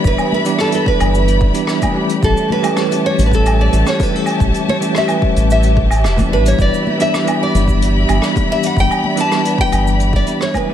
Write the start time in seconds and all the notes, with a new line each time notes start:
Already playing: E3 G3 B3 D4 G4 D5 E5 B5
0.04 G1 B4, kick, cabasa
0.18 cabasa, low woodblock
0.32 B4, high conga
0.44 E3 G3 B3 D4 G4, closed hi-hat, cabasa
0.59 A4, cross-stick, cabasa
0.70 E3 G3 B3 D4, closed hi-hat, cabasa
0.75 A4 B4
0.86 B4, kick
1.00 G1, closed hi-hat, cabasa, low woodblock
1.15 cabasa
1.28 closed hi-hat, cabasa
1.41 kick, high bongo
1.53 E3 G3 B3 D4 G4, closed hi-hat, cabasa
1.67 cross-stick, cabasa
1.82 kick, closed hi-hat, high conga, cabasa, low woodblock
1.92 E3 G3 A3 C#4
1.97 G4
2.09 closed hi-hat, cabasa
2.23 A1 A4 C#5 E5 A5, kick, cabasa
2.37 cabasa
2.50 B4, high conga
2.62 E3 G3 A3 C#4 G4, closed hi-hat, cabasa, low woodblock
2.77 cross-stick, cabasa
2.88 E3 G3 A3 C#4, closed hi-hat, high bongo, cabasa
2.93 G4
3.06 C#5
3.18 A1, closed hi-hat, low conga, cabasa
3.26 B4
3.32 A4, kick, cabasa
3.46 closed hi-hat, cabasa, low woodblock
3.61 D5
3.71 A1 E3 G3 A3 C#4 G4, closed hi-hat, cabasa
3.87 C#5, cross-stick, cabasa
4.00 B4, kick, closed hi-hat, high bongo, high conga, cabasa
4.10 E3 G3 A3 C#4
4.15 G4 A4
4.26 closed hi-hat, cabasa, low woodblock
4.40 A1, kick, cabasa
4.54 closed hi-hat, cabasa
4.69 C#5, high conga
4.80 E3 G3 A3 C#4 G4, closed hi-hat, cabasa
4.95 E5, cross-stick, cabasa
5.05 E3 G3 A3 C#4, closed hi-hat, low woodblock
5.10 B4, cabasa
5.22 kick
5.36 A1, closed hi-hat, cabasa
5.50 E5, cabasa
5.63 closed hi-hat, cabasa
5.77 kick, high bongo
5.91 closed hi-hat, cabasa, low woodblock
6.04 E1, cross-stick, cabasa
6.16 E3 G3 A3 C#4 G4, kick, closed hi-hat, high conga, cabasa
6.28 A1 E3 G3 B3 D4
6.33 E4 B4
6.46 C#5, closed hi-hat, cabasa
6.59 G1 D5 B5, kick, cabasa
6.74 cabasa
6.87 high conga
6.98 E3 G3 B3 D4 G4 E5, closed hi-hat, cabasa
7.14 cross-stick, cabasa
7.24 E3 G3 B3 D4, closed hi-hat, high bongo
7.28 G4, cabasa, low woodblock
7.43 D5
7.54 G1, closed hi-hat, low conga, cabasa
7.68 kick, cabasa
7.82 closed hi-hat, cabasa
8.08 G1 E3 G3 B3 D4 G4, closed hi-hat, cabasa, low woodblock
8.22 cross-stick, cabasa
8.36 kick, closed hi-hat, high bongo, high conga, cabasa
8.46 E3 G3 B3 D4
8.51 G4 E5
8.63 F#5, closed hi-hat, cabasa
8.77 G1 G5, kick, cabasa
8.91 cabasa, low woodblock
9.04 high conga
9.16 E3 G3 B3 D4 G4, closed hi-hat, cabasa
9.20 A5
9.32 cross-stick, cabasa
9.42 E3 G3 B3 D4, closed hi-hat, cabasa
9.47 B4
9.58 G5, kick
9.72 G1, closed hi-hat, cabasa, low woodblock
9.87 cabasa
10.00 closed hi-hat, cabasa
10.13 D5, kick, high bongo
10.26 E3 G3 B3 D4 G4, closed hi-hat, cabasa
10.41 C#5, cross-stick, cabasa
10.54 B4, kick, closed hi-hat, high conga, cabasa, low woodblock
10.65 E3 G3 A3 C#4
10.70 G4